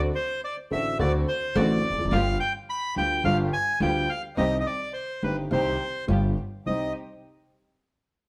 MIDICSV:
0, 0, Header, 1, 5, 480
1, 0, Start_track
1, 0, Key_signature, -3, "minor"
1, 0, Tempo, 566572
1, 1793, Time_signature, 4, 2, 24, 8
1, 7018, End_track
2, 0, Start_track
2, 0, Title_t, "Bandoneon"
2, 0, Program_c, 0, 23
2, 130, Note_on_c, 0, 72, 100
2, 347, Note_off_c, 0, 72, 0
2, 376, Note_on_c, 0, 74, 83
2, 480, Note_off_c, 0, 74, 0
2, 614, Note_on_c, 0, 76, 95
2, 829, Note_off_c, 0, 76, 0
2, 846, Note_on_c, 0, 74, 96
2, 951, Note_off_c, 0, 74, 0
2, 1088, Note_on_c, 0, 72, 98
2, 1325, Note_on_c, 0, 74, 102
2, 1328, Note_off_c, 0, 72, 0
2, 1800, Note_on_c, 0, 77, 108
2, 1811, Note_off_c, 0, 74, 0
2, 2018, Note_off_c, 0, 77, 0
2, 2034, Note_on_c, 0, 79, 105
2, 2140, Note_off_c, 0, 79, 0
2, 2285, Note_on_c, 0, 83, 101
2, 2500, Note_off_c, 0, 83, 0
2, 2523, Note_on_c, 0, 79, 102
2, 2738, Note_off_c, 0, 79, 0
2, 2751, Note_on_c, 0, 77, 108
2, 2858, Note_off_c, 0, 77, 0
2, 2993, Note_on_c, 0, 80, 113
2, 3212, Note_off_c, 0, 80, 0
2, 3235, Note_on_c, 0, 79, 101
2, 3469, Note_on_c, 0, 77, 101
2, 3477, Note_off_c, 0, 79, 0
2, 3576, Note_off_c, 0, 77, 0
2, 3710, Note_on_c, 0, 75, 108
2, 3876, Note_off_c, 0, 75, 0
2, 3900, Note_on_c, 0, 75, 73
2, 3951, Note_on_c, 0, 74, 90
2, 3952, Note_off_c, 0, 75, 0
2, 4173, Note_off_c, 0, 74, 0
2, 4179, Note_on_c, 0, 72, 81
2, 4432, Note_off_c, 0, 72, 0
2, 4437, Note_on_c, 0, 71, 81
2, 4544, Note_off_c, 0, 71, 0
2, 4679, Note_on_c, 0, 72, 92
2, 5128, Note_off_c, 0, 72, 0
2, 5648, Note_on_c, 0, 75, 86
2, 5869, Note_off_c, 0, 75, 0
2, 7018, End_track
3, 0, Start_track
3, 0, Title_t, "String section"
3, 0, Program_c, 1, 48
3, 601, Note_on_c, 1, 60, 61
3, 601, Note_on_c, 1, 62, 52
3, 603, Note_on_c, 1, 66, 62
3, 800, Note_off_c, 1, 62, 0
3, 801, Note_off_c, 1, 60, 0
3, 801, Note_off_c, 1, 66, 0
3, 833, Note_on_c, 1, 60, 82
3, 834, Note_on_c, 1, 62, 77
3, 838, Note_on_c, 1, 66, 81
3, 1036, Note_off_c, 1, 60, 0
3, 1036, Note_off_c, 1, 62, 0
3, 1038, Note_off_c, 1, 66, 0
3, 1317, Note_on_c, 1, 60, 77
3, 1317, Note_on_c, 1, 62, 70
3, 1321, Note_on_c, 1, 66, 90
3, 1517, Note_off_c, 1, 60, 0
3, 1517, Note_off_c, 1, 62, 0
3, 1519, Note_off_c, 1, 66, 0
3, 1793, Note_on_c, 1, 59, 94
3, 1794, Note_on_c, 1, 65, 80
3, 1795, Note_on_c, 1, 67, 91
3, 1993, Note_off_c, 1, 59, 0
3, 1993, Note_off_c, 1, 65, 0
3, 1994, Note_off_c, 1, 67, 0
3, 2508, Note_on_c, 1, 59, 56
3, 2509, Note_on_c, 1, 65, 55
3, 2509, Note_on_c, 1, 67, 68
3, 2709, Note_off_c, 1, 59, 0
3, 2709, Note_off_c, 1, 65, 0
3, 2709, Note_off_c, 1, 67, 0
3, 2747, Note_on_c, 1, 65, 79
3, 2748, Note_on_c, 1, 59, 74
3, 2750, Note_on_c, 1, 67, 83
3, 2948, Note_off_c, 1, 59, 0
3, 2948, Note_off_c, 1, 65, 0
3, 2949, Note_off_c, 1, 67, 0
3, 3229, Note_on_c, 1, 59, 70
3, 3231, Note_on_c, 1, 65, 69
3, 3231, Note_on_c, 1, 67, 83
3, 3428, Note_off_c, 1, 59, 0
3, 3429, Note_off_c, 1, 65, 0
3, 3430, Note_off_c, 1, 67, 0
3, 3703, Note_on_c, 1, 60, 84
3, 3704, Note_on_c, 1, 63, 71
3, 3707, Note_on_c, 1, 67, 87
3, 3906, Note_off_c, 1, 60, 0
3, 3906, Note_off_c, 1, 63, 0
3, 3907, Note_off_c, 1, 67, 0
3, 4426, Note_on_c, 1, 60, 47
3, 4428, Note_on_c, 1, 63, 49
3, 4431, Note_on_c, 1, 67, 56
3, 4631, Note_off_c, 1, 60, 0
3, 4632, Note_off_c, 1, 63, 0
3, 4633, Note_off_c, 1, 67, 0
3, 4669, Note_on_c, 1, 60, 79
3, 4672, Note_on_c, 1, 63, 66
3, 4674, Note_on_c, 1, 67, 88
3, 4874, Note_off_c, 1, 60, 0
3, 4875, Note_off_c, 1, 63, 0
3, 4876, Note_off_c, 1, 67, 0
3, 5157, Note_on_c, 1, 59, 69
3, 5157, Note_on_c, 1, 65, 62
3, 5161, Note_on_c, 1, 67, 75
3, 5362, Note_off_c, 1, 59, 0
3, 5362, Note_off_c, 1, 65, 0
3, 5364, Note_off_c, 1, 67, 0
3, 5643, Note_on_c, 1, 63, 48
3, 5643, Note_on_c, 1, 67, 64
3, 5644, Note_on_c, 1, 60, 59
3, 5845, Note_off_c, 1, 60, 0
3, 5845, Note_off_c, 1, 63, 0
3, 5845, Note_off_c, 1, 67, 0
3, 7018, End_track
4, 0, Start_track
4, 0, Title_t, "Upright piano"
4, 0, Program_c, 2, 0
4, 598, Note_on_c, 2, 50, 53
4, 600, Note_on_c, 2, 57, 44
4, 602, Note_on_c, 2, 60, 47
4, 603, Note_on_c, 2, 45, 58
4, 605, Note_on_c, 2, 33, 61
4, 605, Note_on_c, 2, 66, 55
4, 799, Note_off_c, 2, 50, 0
4, 800, Note_off_c, 2, 57, 0
4, 801, Note_off_c, 2, 45, 0
4, 801, Note_off_c, 2, 60, 0
4, 802, Note_off_c, 2, 33, 0
4, 803, Note_off_c, 2, 66, 0
4, 837, Note_on_c, 2, 50, 100
4, 840, Note_on_c, 2, 57, 68
4, 841, Note_on_c, 2, 38, 95
4, 842, Note_on_c, 2, 60, 74
4, 844, Note_on_c, 2, 66, 88
4, 1039, Note_off_c, 2, 50, 0
4, 1040, Note_off_c, 2, 38, 0
4, 1040, Note_off_c, 2, 57, 0
4, 1041, Note_off_c, 2, 60, 0
4, 1041, Note_off_c, 2, 66, 0
4, 1319, Note_on_c, 2, 60, 68
4, 1320, Note_on_c, 2, 33, 81
4, 1320, Note_on_c, 2, 50, 74
4, 1321, Note_on_c, 2, 45, 81
4, 1321, Note_on_c, 2, 57, 71
4, 1325, Note_on_c, 2, 66, 81
4, 1518, Note_off_c, 2, 33, 0
4, 1518, Note_off_c, 2, 50, 0
4, 1518, Note_off_c, 2, 60, 0
4, 1519, Note_off_c, 2, 45, 0
4, 1519, Note_off_c, 2, 57, 0
4, 1521, Note_off_c, 2, 66, 0
4, 1621, Note_on_c, 2, 40, 63
4, 1677, Note_off_c, 2, 40, 0
4, 1682, Note_on_c, 2, 41, 69
4, 1737, Note_off_c, 2, 41, 0
4, 1744, Note_on_c, 2, 42, 83
4, 1798, Note_off_c, 2, 42, 0
4, 1799, Note_on_c, 2, 50, 73
4, 1800, Note_on_c, 2, 55, 65
4, 1801, Note_on_c, 2, 31, 81
4, 1801, Note_on_c, 2, 65, 91
4, 1802, Note_on_c, 2, 43, 87
4, 1803, Note_on_c, 2, 59, 77
4, 1995, Note_off_c, 2, 50, 0
4, 1996, Note_off_c, 2, 55, 0
4, 1997, Note_off_c, 2, 31, 0
4, 1997, Note_off_c, 2, 43, 0
4, 1997, Note_off_c, 2, 59, 0
4, 1997, Note_off_c, 2, 65, 0
4, 2511, Note_on_c, 2, 38, 62
4, 2511, Note_on_c, 2, 50, 60
4, 2513, Note_on_c, 2, 59, 49
4, 2514, Note_on_c, 2, 65, 60
4, 2515, Note_on_c, 2, 55, 46
4, 2710, Note_off_c, 2, 38, 0
4, 2711, Note_off_c, 2, 50, 0
4, 2711, Note_off_c, 2, 59, 0
4, 2712, Note_off_c, 2, 55, 0
4, 2712, Note_off_c, 2, 65, 0
4, 2749, Note_on_c, 2, 31, 95
4, 2749, Note_on_c, 2, 50, 89
4, 2751, Note_on_c, 2, 43, 89
4, 2751, Note_on_c, 2, 55, 70
4, 2751, Note_on_c, 2, 59, 70
4, 2753, Note_on_c, 2, 65, 96
4, 2949, Note_off_c, 2, 31, 0
4, 2949, Note_off_c, 2, 50, 0
4, 2950, Note_off_c, 2, 43, 0
4, 2950, Note_off_c, 2, 55, 0
4, 2950, Note_off_c, 2, 59, 0
4, 2951, Note_off_c, 2, 65, 0
4, 3222, Note_on_c, 2, 50, 93
4, 3226, Note_on_c, 2, 59, 66
4, 3227, Note_on_c, 2, 55, 71
4, 3228, Note_on_c, 2, 38, 81
4, 3228, Note_on_c, 2, 65, 86
4, 3427, Note_off_c, 2, 50, 0
4, 3427, Note_off_c, 2, 55, 0
4, 3427, Note_off_c, 2, 59, 0
4, 3428, Note_off_c, 2, 38, 0
4, 3428, Note_off_c, 2, 65, 0
4, 3702, Note_on_c, 2, 51, 67
4, 3704, Note_on_c, 2, 55, 68
4, 3704, Note_on_c, 2, 60, 68
4, 3705, Note_on_c, 2, 36, 83
4, 3705, Note_on_c, 2, 48, 83
4, 3709, Note_on_c, 2, 67, 82
4, 3905, Note_off_c, 2, 51, 0
4, 3906, Note_off_c, 2, 55, 0
4, 3906, Note_off_c, 2, 60, 0
4, 3907, Note_off_c, 2, 36, 0
4, 3907, Note_off_c, 2, 48, 0
4, 3908, Note_off_c, 2, 67, 0
4, 4430, Note_on_c, 2, 43, 58
4, 4431, Note_on_c, 2, 31, 57
4, 4431, Note_on_c, 2, 51, 50
4, 4432, Note_on_c, 2, 55, 47
4, 4433, Note_on_c, 2, 60, 48
4, 4433, Note_on_c, 2, 67, 57
4, 4632, Note_off_c, 2, 43, 0
4, 4633, Note_off_c, 2, 31, 0
4, 4633, Note_off_c, 2, 51, 0
4, 4633, Note_off_c, 2, 55, 0
4, 4634, Note_off_c, 2, 60, 0
4, 4634, Note_off_c, 2, 67, 0
4, 4667, Note_on_c, 2, 36, 85
4, 4667, Note_on_c, 2, 51, 73
4, 4670, Note_on_c, 2, 48, 89
4, 4670, Note_on_c, 2, 55, 71
4, 4670, Note_on_c, 2, 60, 68
4, 4671, Note_on_c, 2, 67, 78
4, 4873, Note_off_c, 2, 36, 0
4, 4873, Note_off_c, 2, 51, 0
4, 4874, Note_off_c, 2, 48, 0
4, 4874, Note_off_c, 2, 55, 0
4, 4874, Note_off_c, 2, 60, 0
4, 4875, Note_off_c, 2, 67, 0
4, 5145, Note_on_c, 2, 50, 64
4, 5149, Note_on_c, 2, 59, 61
4, 5150, Note_on_c, 2, 31, 77
4, 5150, Note_on_c, 2, 55, 67
4, 5151, Note_on_c, 2, 43, 77
4, 5153, Note_on_c, 2, 65, 72
4, 5356, Note_off_c, 2, 50, 0
4, 5358, Note_off_c, 2, 55, 0
4, 5358, Note_off_c, 2, 59, 0
4, 5359, Note_off_c, 2, 31, 0
4, 5359, Note_off_c, 2, 43, 0
4, 5360, Note_off_c, 2, 65, 0
4, 5645, Note_on_c, 2, 60, 49
4, 5645, Note_on_c, 2, 63, 63
4, 5646, Note_on_c, 2, 36, 50
4, 5646, Note_on_c, 2, 55, 46
4, 5846, Note_off_c, 2, 36, 0
4, 5846, Note_off_c, 2, 55, 0
4, 5846, Note_off_c, 2, 60, 0
4, 5846, Note_off_c, 2, 63, 0
4, 7018, End_track
5, 0, Start_track
5, 0, Title_t, "Upright bass"
5, 0, Program_c, 3, 32
5, 602, Note_on_c, 3, 33, 70
5, 801, Note_off_c, 3, 33, 0
5, 841, Note_on_c, 3, 38, 96
5, 1040, Note_off_c, 3, 38, 0
5, 1317, Note_on_c, 3, 33, 125
5, 1517, Note_off_c, 3, 33, 0
5, 1611, Note_on_c, 3, 28, 61
5, 1672, Note_off_c, 3, 28, 0
5, 1679, Note_on_c, 3, 29, 71
5, 1729, Note_off_c, 3, 29, 0
5, 1734, Note_on_c, 3, 30, 81
5, 1783, Note_off_c, 3, 30, 0
5, 1788, Note_on_c, 3, 31, 89
5, 1990, Note_off_c, 3, 31, 0
5, 2507, Note_on_c, 3, 38, 66
5, 2708, Note_off_c, 3, 38, 0
5, 2743, Note_on_c, 3, 31, 94
5, 2946, Note_off_c, 3, 31, 0
5, 3221, Note_on_c, 3, 38, 102
5, 3425, Note_off_c, 3, 38, 0
5, 3704, Note_on_c, 3, 36, 96
5, 3906, Note_off_c, 3, 36, 0
5, 4427, Note_on_c, 3, 31, 58
5, 4631, Note_off_c, 3, 31, 0
5, 4666, Note_on_c, 3, 36, 88
5, 4872, Note_off_c, 3, 36, 0
5, 5154, Note_on_c, 3, 31, 112
5, 5361, Note_off_c, 3, 31, 0
5, 5642, Note_on_c, 3, 36, 56
5, 5844, Note_off_c, 3, 36, 0
5, 7018, End_track
0, 0, End_of_file